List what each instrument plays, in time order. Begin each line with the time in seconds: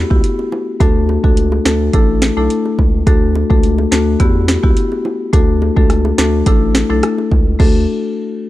0.10 sub bass C#2, marimba B3 E4 F#4 G4, kick
0.24 closed hi-hat
0.39 high bongo
0.52 low bongo
0.80 sub bass D2, marimba A3 D4 F#4 A4, kick, closed hi-hat, high bongo
1.09 high bongo
1.24 sub bass C#2, marimba A3 D4 F#4 A4, kick
1.37 closed hi-hat
1.52 high bongo
1.65 sub bass D2, marimba A3 D4 F#4 A4, snare, high bongo, low bongo
1.93 sub bass A1, marimba A3 D4 E4 A4, kick, closed hi-hat, high bongo
2.22 snare, high bongo
2.37 sub bass B1, marimba A3 D4 E4 A4
2.50 closed hi-hat
2.65 high bongo
2.79 sub bass C#2, kick, low bongo
3.07 sub bass D2, marimba A3 D4 F#4 A4, kick, closed hi-hat, high bongo
3.35 high bongo
3.50 sub bass C#2, marimba A3 D4 F#4 A4, kick
3.63 closed hi-hat
3.78 high bongo
3.91 sub bass D2, marimba A3 D4 F#4 A4, snare, high bongo, low bongo
4.20 sub bass E2, marimba B3 E4 F#4 G4, kick, closed hi-hat, high bongo
4.48 snare, high bongo
4.63 sub bass C#2, marimba B3 E4 F#4 G4, kick
4.77 closed hi-hat
4.92 high bongo
5.05 low bongo
5.33 sub bass D2, marimba A3 D4 F#4 A4, kick, closed hi-hat, high bongo
5.62 high bongo
5.76 sub bass C#2, marimba A3 D4 F#4 A4, kick
5.90 cross-stick, closed hi-hat
6.05 high bongo
6.18 sub bass D2, marimba A3 D4 F#4 A4, snare, high bongo, low bongo
6.46 sub bass A1, marimba A3 D4 E4 A4, kick, closed hi-hat, high bongo
6.75 snare, high bongo
6.90 sub bass B1, marimba A3 D4 E4 A4
7.03 cross-stick, closed hi-hat
7.18 high bongo
7.31 sub bass C#2, kick, low bongo
7.59 sub bass D2, marimba A3 D4 F#4 A4, kick, crash, high bongo